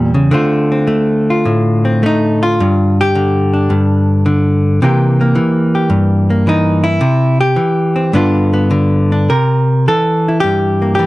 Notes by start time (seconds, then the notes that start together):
Already playing: E2 A#2 E3 G3 C#4
0.14 C#3
0.31 D3 A3 C4 F4
0.72 C4
0.87 A3
1.30 F4
1.45 A2
1.85 C4
2.03 A3 D#4
2.43 F4
2.60 G2
3.01 G4
3.15 D3
3.54 D4
3.70 G2
4.26 D3
4.82 C3 E3 A#3 G4
5.21 A#3
5.35 E3
5.75 G4
5.90 G2
6.30 A#3
6.47 E3 D#4
6.84 E4
7.01 C3
7.41 G4
7.56 E3
7.96 C4
8.13 G2 D3 B3 D4 F4
8.54 B3
8.71 D3
9.12 D4
9.30 C3 A#4
9.88 E3 A4
10.28 E4
10.40 G2 G4
10.82 A#3
10.95 G4
10.99 E3